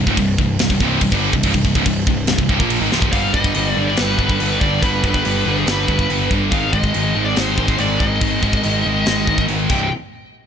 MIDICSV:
0, 0, Header, 1, 5, 480
1, 0, Start_track
1, 0, Tempo, 423131
1, 1635, Time_signature, 4, 2, 24, 8
1, 11873, End_track
2, 0, Start_track
2, 0, Title_t, "Lead electric guitar"
2, 0, Program_c, 0, 29
2, 3545, Note_on_c, 0, 77, 104
2, 3775, Note_off_c, 0, 77, 0
2, 3779, Note_on_c, 0, 75, 105
2, 4188, Note_off_c, 0, 75, 0
2, 4188, Note_on_c, 0, 74, 105
2, 4341, Note_off_c, 0, 74, 0
2, 4400, Note_on_c, 0, 74, 89
2, 4509, Note_off_c, 0, 74, 0
2, 4509, Note_on_c, 0, 71, 91
2, 5226, Note_off_c, 0, 71, 0
2, 5231, Note_on_c, 0, 74, 101
2, 5468, Note_off_c, 0, 74, 0
2, 5472, Note_on_c, 0, 71, 89
2, 5822, Note_off_c, 0, 71, 0
2, 5835, Note_on_c, 0, 71, 87
2, 6322, Note_on_c, 0, 68, 76
2, 6327, Note_off_c, 0, 71, 0
2, 6423, Note_off_c, 0, 68, 0
2, 6423, Note_on_c, 0, 71, 84
2, 7147, Note_off_c, 0, 71, 0
2, 7388, Note_on_c, 0, 77, 103
2, 7631, Note_on_c, 0, 75, 97
2, 7637, Note_off_c, 0, 77, 0
2, 8218, Note_off_c, 0, 75, 0
2, 8222, Note_on_c, 0, 74, 83
2, 8358, Note_off_c, 0, 74, 0
2, 8358, Note_on_c, 0, 72, 85
2, 8838, Note_off_c, 0, 72, 0
2, 8843, Note_on_c, 0, 74, 89
2, 9074, Note_off_c, 0, 74, 0
2, 9079, Note_on_c, 0, 75, 88
2, 10714, Note_off_c, 0, 75, 0
2, 11012, Note_on_c, 0, 79, 79
2, 11229, Note_off_c, 0, 79, 0
2, 11873, End_track
3, 0, Start_track
3, 0, Title_t, "Distorted electric guitar"
3, 0, Program_c, 1, 30
3, 90, Note_on_c, 1, 37, 102
3, 95, Note_on_c, 1, 44, 90
3, 197, Note_off_c, 1, 37, 0
3, 199, Note_off_c, 1, 44, 0
3, 207, Note_on_c, 1, 36, 66
3, 211, Note_on_c, 1, 43, 76
3, 395, Note_off_c, 1, 36, 0
3, 396, Note_off_c, 1, 43, 0
3, 444, Note_on_c, 1, 36, 71
3, 452, Note_on_c, 1, 43, 81
3, 633, Note_off_c, 1, 36, 0
3, 636, Note_off_c, 1, 43, 0
3, 681, Note_on_c, 1, 36, 70
3, 686, Note_on_c, 1, 43, 72
3, 785, Note_off_c, 1, 36, 0
3, 791, Note_off_c, 1, 43, 0
3, 799, Note_on_c, 1, 36, 68
3, 805, Note_on_c, 1, 43, 71
3, 906, Note_off_c, 1, 36, 0
3, 908, Note_off_c, 1, 43, 0
3, 919, Note_on_c, 1, 36, 93
3, 922, Note_on_c, 1, 43, 107
3, 927, Note_on_c, 1, 48, 111
3, 1140, Note_off_c, 1, 36, 0
3, 1146, Note_off_c, 1, 43, 0
3, 1153, Note_on_c, 1, 36, 69
3, 1154, Note_off_c, 1, 48, 0
3, 1160, Note_on_c, 1, 43, 76
3, 1255, Note_off_c, 1, 43, 0
3, 1264, Note_off_c, 1, 36, 0
3, 1268, Note_on_c, 1, 43, 83
3, 1277, Note_on_c, 1, 50, 98
3, 1280, Note_on_c, 1, 55, 99
3, 1504, Note_off_c, 1, 43, 0
3, 1508, Note_off_c, 1, 50, 0
3, 1510, Note_off_c, 1, 55, 0
3, 1514, Note_on_c, 1, 36, 62
3, 1518, Note_on_c, 1, 43, 80
3, 1615, Note_off_c, 1, 36, 0
3, 1623, Note_off_c, 1, 43, 0
3, 1629, Note_on_c, 1, 36, 108
3, 1636, Note_on_c, 1, 43, 113
3, 1737, Note_off_c, 1, 36, 0
3, 1737, Note_off_c, 1, 43, 0
3, 1750, Note_on_c, 1, 36, 69
3, 1751, Note_on_c, 1, 43, 82
3, 1860, Note_off_c, 1, 36, 0
3, 1861, Note_off_c, 1, 43, 0
3, 1874, Note_on_c, 1, 36, 63
3, 1874, Note_on_c, 1, 43, 72
3, 1993, Note_off_c, 1, 36, 0
3, 1994, Note_off_c, 1, 43, 0
3, 1998, Note_on_c, 1, 37, 84
3, 2000, Note_on_c, 1, 44, 96
3, 2107, Note_off_c, 1, 37, 0
3, 2107, Note_off_c, 1, 44, 0
3, 2111, Note_on_c, 1, 36, 75
3, 2112, Note_on_c, 1, 43, 74
3, 2304, Note_off_c, 1, 36, 0
3, 2304, Note_off_c, 1, 43, 0
3, 2351, Note_on_c, 1, 36, 62
3, 2355, Note_on_c, 1, 43, 80
3, 2543, Note_off_c, 1, 36, 0
3, 2545, Note_off_c, 1, 43, 0
3, 2591, Note_on_c, 1, 36, 72
3, 2596, Note_on_c, 1, 43, 80
3, 2697, Note_off_c, 1, 36, 0
3, 2699, Note_off_c, 1, 43, 0
3, 2711, Note_on_c, 1, 36, 66
3, 2712, Note_on_c, 1, 43, 72
3, 2815, Note_off_c, 1, 36, 0
3, 2821, Note_off_c, 1, 43, 0
3, 2829, Note_on_c, 1, 36, 92
3, 2835, Note_on_c, 1, 43, 100
3, 2943, Note_off_c, 1, 36, 0
3, 2944, Note_off_c, 1, 43, 0
3, 2949, Note_on_c, 1, 53, 94
3, 2950, Note_on_c, 1, 46, 86
3, 2956, Note_on_c, 1, 58, 89
3, 3182, Note_off_c, 1, 53, 0
3, 3183, Note_off_c, 1, 46, 0
3, 3186, Note_off_c, 1, 58, 0
3, 3188, Note_on_c, 1, 44, 103
3, 3192, Note_on_c, 1, 51, 102
3, 3300, Note_off_c, 1, 44, 0
3, 3304, Note_off_c, 1, 51, 0
3, 3304, Note_on_c, 1, 36, 86
3, 3311, Note_on_c, 1, 43, 93
3, 3313, Note_on_c, 1, 48, 105
3, 3540, Note_off_c, 1, 36, 0
3, 3540, Note_off_c, 1, 43, 0
3, 3544, Note_off_c, 1, 48, 0
3, 3553, Note_on_c, 1, 43, 100
3, 3561, Note_on_c, 1, 50, 92
3, 3566, Note_on_c, 1, 55, 95
3, 3782, Note_off_c, 1, 50, 0
3, 3787, Note_off_c, 1, 43, 0
3, 3791, Note_on_c, 1, 43, 76
3, 3795, Note_off_c, 1, 55, 0
3, 3795, Note_on_c, 1, 50, 90
3, 3799, Note_on_c, 1, 55, 77
3, 4023, Note_off_c, 1, 50, 0
3, 4029, Note_off_c, 1, 43, 0
3, 4033, Note_on_c, 1, 43, 94
3, 4035, Note_off_c, 1, 55, 0
3, 4037, Note_on_c, 1, 50, 102
3, 4039, Note_on_c, 1, 55, 107
3, 4267, Note_off_c, 1, 50, 0
3, 4271, Note_off_c, 1, 43, 0
3, 4276, Note_on_c, 1, 43, 80
3, 4280, Note_off_c, 1, 55, 0
3, 4280, Note_on_c, 1, 50, 88
3, 4284, Note_on_c, 1, 55, 86
3, 4497, Note_off_c, 1, 43, 0
3, 4504, Note_off_c, 1, 50, 0
3, 4509, Note_off_c, 1, 55, 0
3, 4511, Note_on_c, 1, 43, 93
3, 4518, Note_on_c, 1, 50, 99
3, 4523, Note_on_c, 1, 55, 111
3, 4739, Note_off_c, 1, 43, 0
3, 4743, Note_off_c, 1, 50, 0
3, 4747, Note_off_c, 1, 55, 0
3, 4753, Note_on_c, 1, 43, 76
3, 4757, Note_on_c, 1, 50, 89
3, 4761, Note_on_c, 1, 55, 82
3, 4974, Note_off_c, 1, 43, 0
3, 4983, Note_off_c, 1, 50, 0
3, 4985, Note_off_c, 1, 55, 0
3, 4988, Note_on_c, 1, 43, 83
3, 4996, Note_on_c, 1, 50, 85
3, 4998, Note_on_c, 1, 55, 94
3, 5214, Note_off_c, 1, 43, 0
3, 5218, Note_off_c, 1, 50, 0
3, 5222, Note_off_c, 1, 55, 0
3, 5228, Note_on_c, 1, 43, 72
3, 5231, Note_on_c, 1, 50, 70
3, 5236, Note_on_c, 1, 55, 81
3, 5457, Note_off_c, 1, 43, 0
3, 5460, Note_off_c, 1, 50, 0
3, 5463, Note_off_c, 1, 55, 0
3, 5470, Note_on_c, 1, 43, 86
3, 5474, Note_on_c, 1, 50, 95
3, 5477, Note_on_c, 1, 55, 95
3, 5695, Note_off_c, 1, 43, 0
3, 5700, Note_off_c, 1, 50, 0
3, 5705, Note_off_c, 1, 55, 0
3, 5709, Note_on_c, 1, 43, 74
3, 5714, Note_on_c, 1, 50, 75
3, 5718, Note_on_c, 1, 55, 88
3, 5932, Note_off_c, 1, 43, 0
3, 5936, Note_off_c, 1, 50, 0
3, 5940, Note_off_c, 1, 55, 0
3, 5946, Note_on_c, 1, 43, 87
3, 5949, Note_on_c, 1, 50, 99
3, 5954, Note_on_c, 1, 55, 100
3, 6175, Note_off_c, 1, 43, 0
3, 6179, Note_off_c, 1, 50, 0
3, 6181, Note_off_c, 1, 55, 0
3, 6188, Note_on_c, 1, 43, 77
3, 6193, Note_on_c, 1, 50, 86
3, 6195, Note_on_c, 1, 55, 81
3, 6419, Note_off_c, 1, 43, 0
3, 6421, Note_off_c, 1, 50, 0
3, 6427, Note_off_c, 1, 55, 0
3, 6432, Note_on_c, 1, 43, 94
3, 6434, Note_on_c, 1, 50, 101
3, 6441, Note_on_c, 1, 55, 102
3, 6664, Note_off_c, 1, 43, 0
3, 6669, Note_off_c, 1, 50, 0
3, 6674, Note_off_c, 1, 55, 0
3, 6678, Note_on_c, 1, 43, 74
3, 6682, Note_on_c, 1, 50, 89
3, 6687, Note_on_c, 1, 55, 86
3, 6903, Note_off_c, 1, 43, 0
3, 6909, Note_off_c, 1, 50, 0
3, 6912, Note_off_c, 1, 55, 0
3, 6917, Note_on_c, 1, 43, 88
3, 6922, Note_on_c, 1, 50, 93
3, 6926, Note_on_c, 1, 55, 83
3, 7140, Note_off_c, 1, 43, 0
3, 7147, Note_off_c, 1, 55, 0
3, 7148, Note_off_c, 1, 50, 0
3, 7153, Note_on_c, 1, 43, 74
3, 7160, Note_on_c, 1, 55, 88
3, 7161, Note_on_c, 1, 50, 78
3, 7377, Note_off_c, 1, 43, 0
3, 7381, Note_off_c, 1, 50, 0
3, 7381, Note_off_c, 1, 55, 0
3, 7392, Note_on_c, 1, 44, 94
3, 7396, Note_on_c, 1, 51, 90
3, 7401, Note_on_c, 1, 56, 99
3, 7632, Note_off_c, 1, 51, 0
3, 7635, Note_off_c, 1, 44, 0
3, 7639, Note_on_c, 1, 44, 73
3, 7645, Note_on_c, 1, 51, 73
3, 7647, Note_off_c, 1, 56, 0
3, 7651, Note_on_c, 1, 56, 81
3, 7869, Note_off_c, 1, 51, 0
3, 7873, Note_off_c, 1, 44, 0
3, 7877, Note_on_c, 1, 44, 89
3, 7882, Note_off_c, 1, 56, 0
3, 7883, Note_on_c, 1, 51, 97
3, 7887, Note_on_c, 1, 56, 98
3, 8104, Note_off_c, 1, 51, 0
3, 8106, Note_off_c, 1, 44, 0
3, 8110, Note_on_c, 1, 44, 80
3, 8114, Note_off_c, 1, 56, 0
3, 8118, Note_on_c, 1, 51, 82
3, 8119, Note_on_c, 1, 56, 92
3, 8338, Note_off_c, 1, 44, 0
3, 8344, Note_off_c, 1, 51, 0
3, 8345, Note_off_c, 1, 56, 0
3, 8351, Note_on_c, 1, 44, 94
3, 8357, Note_on_c, 1, 51, 89
3, 8358, Note_on_c, 1, 56, 103
3, 8577, Note_off_c, 1, 44, 0
3, 8584, Note_off_c, 1, 51, 0
3, 8587, Note_off_c, 1, 56, 0
3, 8591, Note_on_c, 1, 44, 77
3, 8597, Note_on_c, 1, 51, 76
3, 8600, Note_on_c, 1, 56, 85
3, 8822, Note_off_c, 1, 44, 0
3, 8827, Note_off_c, 1, 51, 0
3, 8827, Note_off_c, 1, 56, 0
3, 8835, Note_on_c, 1, 44, 83
3, 8841, Note_on_c, 1, 51, 89
3, 8841, Note_on_c, 1, 56, 85
3, 9067, Note_off_c, 1, 44, 0
3, 9073, Note_off_c, 1, 51, 0
3, 9074, Note_off_c, 1, 56, 0
3, 9081, Note_on_c, 1, 44, 74
3, 9087, Note_on_c, 1, 51, 73
3, 9088, Note_on_c, 1, 56, 80
3, 9300, Note_off_c, 1, 44, 0
3, 9309, Note_off_c, 1, 51, 0
3, 9312, Note_off_c, 1, 56, 0
3, 9313, Note_on_c, 1, 44, 86
3, 9323, Note_on_c, 1, 51, 87
3, 9325, Note_on_c, 1, 56, 103
3, 9542, Note_off_c, 1, 44, 0
3, 9545, Note_off_c, 1, 51, 0
3, 9548, Note_off_c, 1, 56, 0
3, 9555, Note_on_c, 1, 44, 74
3, 9559, Note_on_c, 1, 51, 75
3, 9562, Note_on_c, 1, 56, 84
3, 9783, Note_off_c, 1, 44, 0
3, 9788, Note_off_c, 1, 51, 0
3, 9791, Note_off_c, 1, 56, 0
3, 9797, Note_on_c, 1, 44, 78
3, 9801, Note_on_c, 1, 51, 84
3, 9804, Note_on_c, 1, 56, 92
3, 10023, Note_off_c, 1, 44, 0
3, 10029, Note_off_c, 1, 51, 0
3, 10033, Note_off_c, 1, 56, 0
3, 10037, Note_on_c, 1, 44, 74
3, 10043, Note_on_c, 1, 51, 75
3, 10046, Note_on_c, 1, 56, 91
3, 10263, Note_off_c, 1, 44, 0
3, 10270, Note_off_c, 1, 51, 0
3, 10275, Note_off_c, 1, 56, 0
3, 10277, Note_on_c, 1, 44, 87
3, 10283, Note_on_c, 1, 51, 92
3, 10288, Note_on_c, 1, 56, 93
3, 10507, Note_off_c, 1, 44, 0
3, 10509, Note_off_c, 1, 51, 0
3, 10517, Note_off_c, 1, 56, 0
3, 10520, Note_on_c, 1, 44, 74
3, 10523, Note_on_c, 1, 51, 79
3, 10530, Note_on_c, 1, 56, 71
3, 10742, Note_off_c, 1, 44, 0
3, 10750, Note_off_c, 1, 51, 0
3, 10755, Note_off_c, 1, 56, 0
3, 10756, Note_on_c, 1, 44, 74
3, 10763, Note_on_c, 1, 51, 79
3, 10768, Note_on_c, 1, 56, 85
3, 10997, Note_off_c, 1, 44, 0
3, 11000, Note_off_c, 1, 51, 0
3, 11003, Note_off_c, 1, 56, 0
3, 11004, Note_on_c, 1, 36, 76
3, 11015, Note_on_c, 1, 43, 86
3, 11021, Note_on_c, 1, 48, 88
3, 11193, Note_off_c, 1, 36, 0
3, 11198, Note_off_c, 1, 43, 0
3, 11201, Note_off_c, 1, 48, 0
3, 11873, End_track
4, 0, Start_track
4, 0, Title_t, "Picked electric bass"
4, 0, Program_c, 2, 34
4, 73, Note_on_c, 2, 25, 107
4, 187, Note_off_c, 2, 25, 0
4, 199, Note_on_c, 2, 24, 89
4, 421, Note_off_c, 2, 24, 0
4, 435, Note_on_c, 2, 24, 80
4, 659, Note_off_c, 2, 24, 0
4, 668, Note_on_c, 2, 24, 85
4, 784, Note_off_c, 2, 24, 0
4, 795, Note_on_c, 2, 24, 88
4, 904, Note_off_c, 2, 24, 0
4, 911, Note_on_c, 2, 24, 89
4, 1136, Note_off_c, 2, 24, 0
4, 1146, Note_on_c, 2, 24, 84
4, 1262, Note_off_c, 2, 24, 0
4, 1268, Note_on_c, 2, 31, 97
4, 1494, Note_off_c, 2, 31, 0
4, 1513, Note_on_c, 2, 24, 77
4, 1625, Note_off_c, 2, 24, 0
4, 1630, Note_on_c, 2, 24, 91
4, 1744, Note_off_c, 2, 24, 0
4, 1752, Note_on_c, 2, 24, 87
4, 1861, Note_off_c, 2, 24, 0
4, 1868, Note_on_c, 2, 24, 87
4, 1979, Note_off_c, 2, 24, 0
4, 1986, Note_on_c, 2, 25, 101
4, 2101, Note_off_c, 2, 25, 0
4, 2108, Note_on_c, 2, 24, 87
4, 2333, Note_off_c, 2, 24, 0
4, 2347, Note_on_c, 2, 24, 77
4, 2572, Note_off_c, 2, 24, 0
4, 2592, Note_on_c, 2, 24, 89
4, 2697, Note_off_c, 2, 24, 0
4, 2704, Note_on_c, 2, 24, 84
4, 2819, Note_off_c, 2, 24, 0
4, 2825, Note_on_c, 2, 24, 90
4, 2939, Note_off_c, 2, 24, 0
4, 2949, Note_on_c, 2, 34, 93
4, 3173, Note_off_c, 2, 34, 0
4, 3180, Note_on_c, 2, 32, 98
4, 3296, Note_off_c, 2, 32, 0
4, 3309, Note_on_c, 2, 24, 97
4, 3533, Note_off_c, 2, 24, 0
4, 3546, Note_on_c, 2, 31, 85
4, 3749, Note_off_c, 2, 31, 0
4, 3789, Note_on_c, 2, 31, 85
4, 3992, Note_off_c, 2, 31, 0
4, 4042, Note_on_c, 2, 31, 89
4, 4238, Note_off_c, 2, 31, 0
4, 4279, Note_on_c, 2, 31, 86
4, 4477, Note_off_c, 2, 31, 0
4, 4526, Note_on_c, 2, 31, 93
4, 4721, Note_off_c, 2, 31, 0
4, 4745, Note_on_c, 2, 31, 82
4, 4949, Note_off_c, 2, 31, 0
4, 4999, Note_on_c, 2, 31, 85
4, 5197, Note_off_c, 2, 31, 0
4, 5233, Note_on_c, 2, 31, 82
4, 5433, Note_off_c, 2, 31, 0
4, 5477, Note_on_c, 2, 31, 90
4, 5676, Note_off_c, 2, 31, 0
4, 5713, Note_on_c, 2, 31, 89
4, 5913, Note_off_c, 2, 31, 0
4, 5958, Note_on_c, 2, 31, 83
4, 6157, Note_off_c, 2, 31, 0
4, 6195, Note_on_c, 2, 31, 79
4, 6395, Note_off_c, 2, 31, 0
4, 6432, Note_on_c, 2, 31, 92
4, 6633, Note_off_c, 2, 31, 0
4, 6677, Note_on_c, 2, 31, 83
4, 6876, Note_off_c, 2, 31, 0
4, 6917, Note_on_c, 2, 31, 91
4, 7117, Note_off_c, 2, 31, 0
4, 7154, Note_on_c, 2, 31, 92
4, 7354, Note_off_c, 2, 31, 0
4, 7398, Note_on_c, 2, 32, 93
4, 7597, Note_off_c, 2, 32, 0
4, 7633, Note_on_c, 2, 32, 92
4, 7835, Note_off_c, 2, 32, 0
4, 7887, Note_on_c, 2, 32, 88
4, 8082, Note_off_c, 2, 32, 0
4, 8116, Note_on_c, 2, 32, 79
4, 8317, Note_off_c, 2, 32, 0
4, 8356, Note_on_c, 2, 32, 88
4, 8557, Note_off_c, 2, 32, 0
4, 8592, Note_on_c, 2, 32, 80
4, 8794, Note_off_c, 2, 32, 0
4, 8839, Note_on_c, 2, 32, 83
4, 9039, Note_off_c, 2, 32, 0
4, 9080, Note_on_c, 2, 32, 84
4, 9280, Note_off_c, 2, 32, 0
4, 9317, Note_on_c, 2, 32, 78
4, 9518, Note_off_c, 2, 32, 0
4, 9559, Note_on_c, 2, 32, 81
4, 9759, Note_off_c, 2, 32, 0
4, 9808, Note_on_c, 2, 32, 82
4, 10005, Note_off_c, 2, 32, 0
4, 10043, Note_on_c, 2, 32, 76
4, 10242, Note_off_c, 2, 32, 0
4, 10284, Note_on_c, 2, 32, 86
4, 10483, Note_off_c, 2, 32, 0
4, 10520, Note_on_c, 2, 32, 74
4, 10721, Note_off_c, 2, 32, 0
4, 10766, Note_on_c, 2, 32, 76
4, 10964, Note_off_c, 2, 32, 0
4, 11002, Note_on_c, 2, 24, 91
4, 11223, Note_off_c, 2, 24, 0
4, 11873, End_track
5, 0, Start_track
5, 0, Title_t, "Drums"
5, 78, Note_on_c, 9, 36, 88
5, 191, Note_off_c, 9, 36, 0
5, 194, Note_on_c, 9, 49, 67
5, 197, Note_on_c, 9, 36, 91
5, 307, Note_off_c, 9, 49, 0
5, 310, Note_off_c, 9, 36, 0
5, 436, Note_on_c, 9, 36, 101
5, 550, Note_off_c, 9, 36, 0
5, 671, Note_on_c, 9, 49, 71
5, 681, Note_on_c, 9, 38, 102
5, 784, Note_off_c, 9, 49, 0
5, 794, Note_on_c, 9, 36, 88
5, 795, Note_off_c, 9, 38, 0
5, 908, Note_off_c, 9, 36, 0
5, 913, Note_on_c, 9, 36, 80
5, 1026, Note_off_c, 9, 36, 0
5, 1147, Note_on_c, 9, 49, 67
5, 1151, Note_on_c, 9, 36, 95
5, 1261, Note_off_c, 9, 49, 0
5, 1265, Note_off_c, 9, 36, 0
5, 1271, Note_on_c, 9, 36, 88
5, 1385, Note_off_c, 9, 36, 0
5, 1511, Note_on_c, 9, 36, 99
5, 1624, Note_on_c, 9, 49, 68
5, 1625, Note_off_c, 9, 36, 0
5, 1629, Note_on_c, 9, 36, 95
5, 1738, Note_off_c, 9, 49, 0
5, 1743, Note_off_c, 9, 36, 0
5, 1749, Note_on_c, 9, 36, 90
5, 1863, Note_off_c, 9, 36, 0
5, 1868, Note_on_c, 9, 36, 82
5, 1982, Note_off_c, 9, 36, 0
5, 1989, Note_on_c, 9, 36, 89
5, 2102, Note_off_c, 9, 36, 0
5, 2107, Note_on_c, 9, 49, 64
5, 2109, Note_on_c, 9, 36, 93
5, 2220, Note_off_c, 9, 49, 0
5, 2222, Note_off_c, 9, 36, 0
5, 2348, Note_on_c, 9, 36, 90
5, 2461, Note_off_c, 9, 36, 0
5, 2577, Note_on_c, 9, 49, 60
5, 2587, Note_on_c, 9, 38, 110
5, 2691, Note_off_c, 9, 49, 0
5, 2701, Note_off_c, 9, 38, 0
5, 2705, Note_on_c, 9, 36, 93
5, 2819, Note_off_c, 9, 36, 0
5, 2827, Note_on_c, 9, 36, 80
5, 2941, Note_off_c, 9, 36, 0
5, 2948, Note_on_c, 9, 36, 95
5, 3062, Note_off_c, 9, 36, 0
5, 3065, Note_on_c, 9, 49, 65
5, 3179, Note_off_c, 9, 49, 0
5, 3314, Note_on_c, 9, 38, 67
5, 3427, Note_off_c, 9, 38, 0
5, 3427, Note_on_c, 9, 36, 103
5, 3541, Note_off_c, 9, 36, 0
5, 3547, Note_on_c, 9, 46, 58
5, 3548, Note_on_c, 9, 36, 97
5, 3660, Note_off_c, 9, 46, 0
5, 3662, Note_off_c, 9, 36, 0
5, 3788, Note_on_c, 9, 36, 80
5, 3902, Note_off_c, 9, 36, 0
5, 3907, Note_on_c, 9, 36, 83
5, 4020, Note_off_c, 9, 36, 0
5, 4022, Note_on_c, 9, 46, 52
5, 4135, Note_off_c, 9, 46, 0
5, 4500, Note_on_c, 9, 46, 54
5, 4510, Note_on_c, 9, 38, 102
5, 4614, Note_off_c, 9, 46, 0
5, 4624, Note_off_c, 9, 38, 0
5, 4749, Note_on_c, 9, 36, 70
5, 4863, Note_off_c, 9, 36, 0
5, 4872, Note_on_c, 9, 36, 85
5, 4985, Note_off_c, 9, 36, 0
5, 4993, Note_on_c, 9, 46, 54
5, 5106, Note_off_c, 9, 46, 0
5, 5233, Note_on_c, 9, 36, 89
5, 5346, Note_off_c, 9, 36, 0
5, 5474, Note_on_c, 9, 36, 106
5, 5475, Note_on_c, 9, 46, 54
5, 5587, Note_off_c, 9, 36, 0
5, 5588, Note_off_c, 9, 46, 0
5, 5714, Note_on_c, 9, 36, 80
5, 5828, Note_off_c, 9, 36, 0
5, 5834, Note_on_c, 9, 36, 81
5, 5948, Note_off_c, 9, 36, 0
5, 5956, Note_on_c, 9, 46, 53
5, 6069, Note_off_c, 9, 46, 0
5, 6433, Note_on_c, 9, 46, 47
5, 6444, Note_on_c, 9, 38, 101
5, 6547, Note_off_c, 9, 46, 0
5, 6557, Note_off_c, 9, 38, 0
5, 6675, Note_on_c, 9, 36, 75
5, 6788, Note_off_c, 9, 36, 0
5, 6795, Note_on_c, 9, 36, 82
5, 6908, Note_off_c, 9, 36, 0
5, 6919, Note_on_c, 9, 46, 52
5, 7033, Note_off_c, 9, 46, 0
5, 7156, Note_on_c, 9, 36, 80
5, 7269, Note_off_c, 9, 36, 0
5, 7392, Note_on_c, 9, 46, 50
5, 7395, Note_on_c, 9, 36, 104
5, 7505, Note_off_c, 9, 46, 0
5, 7509, Note_off_c, 9, 36, 0
5, 7635, Note_on_c, 9, 36, 72
5, 7749, Note_off_c, 9, 36, 0
5, 7755, Note_on_c, 9, 36, 79
5, 7868, Note_off_c, 9, 36, 0
5, 7876, Note_on_c, 9, 46, 52
5, 7989, Note_off_c, 9, 46, 0
5, 8353, Note_on_c, 9, 46, 50
5, 8363, Note_on_c, 9, 38, 97
5, 8466, Note_off_c, 9, 46, 0
5, 8476, Note_off_c, 9, 38, 0
5, 8596, Note_on_c, 9, 36, 71
5, 8709, Note_off_c, 9, 36, 0
5, 8715, Note_on_c, 9, 36, 85
5, 8829, Note_off_c, 9, 36, 0
5, 8830, Note_on_c, 9, 46, 55
5, 8944, Note_off_c, 9, 46, 0
5, 9077, Note_on_c, 9, 36, 85
5, 9191, Note_off_c, 9, 36, 0
5, 9314, Note_on_c, 9, 46, 51
5, 9318, Note_on_c, 9, 36, 102
5, 9427, Note_off_c, 9, 46, 0
5, 9432, Note_off_c, 9, 36, 0
5, 9559, Note_on_c, 9, 36, 72
5, 9673, Note_off_c, 9, 36, 0
5, 9678, Note_on_c, 9, 36, 79
5, 9792, Note_off_c, 9, 36, 0
5, 9795, Note_on_c, 9, 46, 52
5, 9908, Note_off_c, 9, 46, 0
5, 10277, Note_on_c, 9, 46, 47
5, 10287, Note_on_c, 9, 38, 97
5, 10390, Note_off_c, 9, 46, 0
5, 10401, Note_off_c, 9, 38, 0
5, 10521, Note_on_c, 9, 36, 72
5, 10634, Note_off_c, 9, 36, 0
5, 10641, Note_on_c, 9, 36, 75
5, 10754, Note_off_c, 9, 36, 0
5, 10759, Note_on_c, 9, 46, 48
5, 10872, Note_off_c, 9, 46, 0
5, 10997, Note_on_c, 9, 57, 77
5, 11002, Note_on_c, 9, 36, 98
5, 11111, Note_off_c, 9, 57, 0
5, 11116, Note_off_c, 9, 36, 0
5, 11873, End_track
0, 0, End_of_file